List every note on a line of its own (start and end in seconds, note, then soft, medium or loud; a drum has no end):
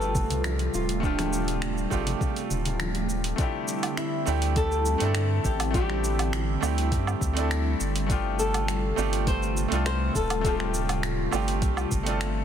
0.00 0.25 G1 loud
0.00 3.35 C3 medium
0.00 3.35 G3 medium
0.00 1.00 A3 medium
0.00 3.35 A3 medium
0.00 1.02 C4 medium
0.00 1.03 D4 medium
0.00 1.05 F4 medium
0.00 3.35 F4 medium
0.00 1.07 G4 loud
0.00 0.77 A4 loud
0.00 high bongo medium
0.00 shaker soft
0.15 kick loud
0.15 low conga medium
0.15 shaker medium
0.30 0.69 C2 loud
0.30 open hi-hat medium
0.30 low conga medium
0.30 shaker soft
0.44 finger snap loud
0.44 high bongo medium
0.44 high conga medium
0.44 shaker soft
0.59 open hi-hat soft
0.74 1.87 D1 medium
0.74 1.03 F4 medium
0.74 high bongo medium
0.74 shaker medium
0.89 open hi-hat medium
0.89 shaker soft
1.00 1.87 A3 medium
1.00 1.87 C4 medium
1.00 1.88 D4 medium
1.00 2.76 D4 medium
1.00 kick loud
1.00 shaker soft
1.05 1.89 F4 medium
1.05 1.90 G4 medium
1.19 finger snap soft
1.19 open hi-hat soft
1.19 high bongo medium
1.19 high conga medium
1.19 shaker soft
1.33 shaker medium
1.48 open hi-hat medium
1.48 high bongo medium
1.48 shaker soft
1.62 finger snap loud
1.62 shaker soft
1.78 shaker soft
1.90 2.15 G1 loud
1.90 2.06 A3 medium
1.90 2.07 C4 medium
1.90 2.07 D4 medium
1.90 2.08 F4 medium
1.90 2.08 G4 loud
1.90 kick medium
1.90 high bongo medium
1.90 shaker medium
2.07 open hi-hat medium
2.07 high conga medium
2.07 low conga medium
2.07 shaker soft
2.21 kick loud
2.21 high bongo medium
2.21 shaker soft
2.36 open hi-hat soft
2.36 shaker soft
2.50 3.34 D1 medium
2.50 low conga medium
2.50 shaker medium
2.65 open hi-hat medium
2.65 high bongo medium
2.65 low conga medium
2.65 shaker soft
2.80 finger snap loud
2.80 high conga medium
2.80 shaker soft
2.95 open hi-hat soft
2.95 high bongo medium
3.09 shaker medium
3.24 open hi-hat medium
3.24 shaker soft
3.36 8.05 D3 medium
3.36 12.45 G3 medium
3.36 4.22 A3 medium
3.36 4.23 C4 medium
3.36 8.05 C4 medium
3.36 4.24 D4 medium
3.36 8.05 E4 medium
3.36 kick loud
3.36 open hi-hat soft
3.36 shaker soft
3.41 4.25 E4 medium
3.41 4.25 G4 medium
3.68 shaker medium
3.83 open hi-hat medium
3.83 low woodblock medium
3.83 shaker soft
3.97 4.58 E4 medium
3.97 finger snap loud
3.97 open hi-hat soft
3.97 shaker soft
4.26 4.96 D2 loud
4.26 4.42 A3 medium
4.26 4.42 C4 medium
4.26 4.43 D4 medium
4.26 4.43 E4 medium
4.26 4.43 G4 loud
4.26 shaker medium
4.42 open hi-hat medium
4.42 shaker soft
4.56 5.45 A4 loud
4.56 kick loud
4.56 open hi-hat soft
4.56 shaker soft
4.72 shaker soft
4.86 shaker medium
4.98 5.40 G2 loud
4.98 5.69 A3 medium
4.98 5.70 C4 medium
4.98 5.71 D4 medium
4.98 open hi-hat medium
4.98 shaker soft
5.03 5.72 E4 medium
5.03 5.72 A4 loud
5.15 finger snap loud
5.15 open hi-hat soft
5.15 shaker soft
5.45 6.57 A1 loud
5.45 5.73 G4 medium
5.45 kick medium
5.45 shaker medium
5.60 open hi-hat medium
5.60 low woodblock medium
5.60 shaker soft
5.71 6.57 A3 medium
5.71 6.58 C4 medium
5.71 6.59 D4 medium
5.71 6.88 G4 medium
5.71 kick loud
5.71 open hi-hat soft
5.75 6.60 E4 medium
5.75 6.61 G4 loud
5.75 shaker soft
5.90 finger snap soft
6.04 shaker medium
6.19 open hi-hat medium
6.19 low woodblock medium
6.19 shaker soft
6.33 finger snap loud
6.33 open hi-hat soft
6.33 shaker soft
6.61 6.93 D2 loud
6.61 6.77 A3 medium
6.61 6.77 C4 medium
6.61 6.78 D4 medium
6.61 6.78 E4 medium
6.61 6.79 G4 loud
6.61 low woodblock medium
6.61 shaker medium
6.78 open hi-hat medium
6.78 shaker soft
6.92 7.15 G2 medium
6.92 kick loud
6.92 open hi-hat soft
6.92 shaker soft
7.07 low woodblock medium
7.07 shaker soft
7.21 7.75 D2 loud
7.21 kick medium
7.21 shaker medium
7.33 8.04 A3 medium
7.33 8.05 C4 medium
7.33 8.06 D4 medium
7.33 open hi-hat medium
7.33 shaker soft
7.39 8.07 E4 medium
7.39 8.08 A4 medium
7.51 finger snap loud
7.51 open hi-hat soft
7.51 shaker soft
7.80 8.93 G1 medium
7.80 shaker medium
7.96 open hi-hat medium
7.96 shaker soft
8.06 12.45 C3 medium
8.06 8.93 A3 medium
8.06 12.45 A3 medium
8.06 8.93 C4 medium
8.06 8.94 D4 medium
8.06 12.45 F4 medium
8.06 kick loud
8.06 open hi-hat soft
8.06 shaker soft
8.12 8.95 F4 medium
8.12 8.96 G4 medium
8.39 9.27 A4 medium
8.39 shaker medium
8.54 open hi-hat medium
8.54 low woodblock medium
8.54 shaker soft
8.68 finger snap loud
8.68 open hi-hat soft
8.68 shaker soft
8.96 9.66 G1 loud
8.96 9.12 A3 medium
8.96 9.13 C4 medium
8.96 9.13 D4 medium
8.96 9.14 F4 medium
8.96 9.14 G4 loud
8.96 shaker medium
9.13 open hi-hat medium
9.13 shaker soft
9.27 9.82 C5 loud
9.27 kick loud
9.27 open hi-hat soft
9.27 shaker soft
9.43 shaker soft
9.57 shaker medium
9.68 10.10 C2 loud
9.68 10.40 A3 medium
9.68 10.40 C4 medium
9.68 10.41 D4 medium
9.68 open hi-hat medium
9.68 shaker soft
9.73 10.42 F4 medium
9.73 10.43 A4 loud
9.86 10.15 C5 loud
9.86 finger snap loud
9.86 open hi-hat soft
9.86 shaker soft
10.15 11.28 D1 loud
10.15 10.46 A4 medium
10.15 kick medium
10.15 shaker medium
10.30 open hi-hat medium
10.30 low woodblock medium
10.30 shaker soft
10.41 11.28 A3 medium
10.41 11.29 C4 medium
10.41 11.29 D4 medium
10.41 12.17 G4 medium
10.41 kick loud
10.41 open hi-hat soft
10.41 shaker soft
10.46 11.30 F4 medium
10.46 11.31 G4 medium
10.60 finger snap soft
10.74 shaker medium
10.89 open hi-hat medium
10.89 low woodblock medium
10.89 shaker soft
11.03 finger snap loud
11.03 open hi-hat soft
11.03 shaker soft
11.31 11.63 G1 loud
11.31 11.48 A3 medium
11.31 11.48 C4 medium
11.31 11.48 D4 medium
11.31 11.49 F4 medium
11.31 11.49 G4 loud
11.31 low woodblock medium
11.31 shaker medium
11.48 open hi-hat soft
11.48 shaker soft
11.62 11.86 C2 medium
11.62 kick loud
11.62 open hi-hat soft
11.62 shaker soft
11.77 low woodblock medium
11.77 shaker soft
11.91 12.45 G1 medium
11.91 kick medium
11.91 shaker medium
12.03 12.45 A3 medium
12.03 12.45 C4 medium
12.03 12.45 D4 medium
12.03 open hi-hat soft
12.03 shaker soft
12.09 12.45 F4 medium
12.09 12.45 A4 medium
12.21 finger snap loud
12.21 open hi-hat soft
12.21 shaker soft